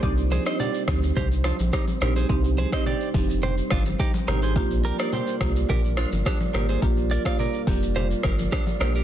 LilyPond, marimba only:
\new Staff \with { instrumentName = "Marimba" } { \time 4/4 \key c \minor \tempo 4 = 106 <c' d' ees' g'>8. <c' d' ees' g'>16 r8 <c' d' ees' g'>16 r4. r16 <c' d' ees' g'>16 r16 | <c' d' ees' g'>8. <c' d' ees' g'>16 r8 <c' d' ees' g'>16 r4. r16 <c' d' ees' g'>16 r16 | <bes d' f' g'>8. <bes d' f' g'>16 r8 <bes d' f' g'>16 r4. r16 <bes d' f' g'>16 r16 | <bes d' f' g'>8. <bes d' f' g'>16 r8 <bes d' f' g'>16 r4. r16 <bes d' f' g'>16 r16 | }